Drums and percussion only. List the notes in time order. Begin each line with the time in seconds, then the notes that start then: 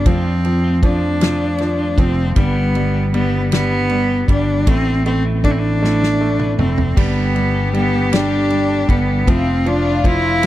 0.06 kick, ride
0.45 ride
0.83 kick, ride
1.21 snare, ride
1.58 snare, ride
1.98 kick, ride
2.36 kick, ride
2.75 ride
3.14 ride
3.52 snare, ride
3.89 ride
4.28 kick, ride
4.67 kick, ride
5.06 ride
5.44 kick, ride
5.84 snare
6.03 snare
6.39 mid tom
6.59 mid tom
6.78 floor tom
6.97 kick, crash
7.36 ride
7.74 ride
8.13 snare, ride
8.50 ride
8.89 kick, ride
9.27 kick, ride
9.66 ride
10.04 kick, ride
10.43 ride